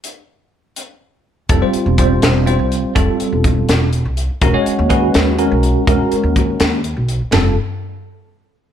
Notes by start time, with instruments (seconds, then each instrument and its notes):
0.04 closed hi-hat
0.76 closed hi-hat
1.49 upright bass F1, tine electric piano G3 C4 F4 A4, kick, closed hi-hat
1.62 tine electric piano G3 C4 F4 C5
1.73 muted upright bass stroke, closed hi-hat
1.86 upright bass E1
1.98 tine electric piano G3 C4 F4 C5, kick, closed hi-hat
2.22 upright bass E1, snare, closed hi-hat
2.46 tine electric piano G3 C4 F4 C5, closed hi-hat
2.59 upright bass C2
2.72 closed hi-hat
2.83 muted upright bass stroke
2.95 upright bass F1, tine electric piano G3 C4 F4 A4, kick, closed hi-hat
3.20 muted upright bass stroke, closed hi-hat
3.33 upright bass E1
3.44 kick, closed hi-hat
3.69 upright bass E1, snare, closed hi-hat
3.93 closed hi-hat
4.05 upright bass C2
4.17 closed hi-hat
4.30 muted upright bass stroke
4.42 upright bass E1, tine electric piano G#3 C#4 F#4 A#4, kick, closed hi-hat
4.54 tine electric piano G#3 C#4 F#4 C#5
4.66 muted upright bass stroke, closed hi-hat
4.79 upright bass D#2
4.90 tine electric piano G#3 C#4 F#4 B4, kick, closed hi-hat
5.14 upright bass D#2, snare, closed hi-hat
5.38 tine electric piano G#3 C#4 F#4 A#4, closed hi-hat
5.51 upright bass B1
5.63 closed hi-hat
5.76 muted upright bass stroke
5.87 upright bass E1, tine electric piano G#3 C#4 F#4 A#4, kick, closed hi-hat
6.12 muted upright bass stroke, closed hi-hat
6.24 upright bass D#2
6.36 kick, closed hi-hat
6.60 upright bass D#2, snare, closed hi-hat
6.84 closed hi-hat
6.97 upright bass B1
7.09 closed hi-hat
7.21 muted upright bass stroke
7.32 upright bass F1, tine electric piano G3 C4 F4 A4, snare, floor tom, ride bell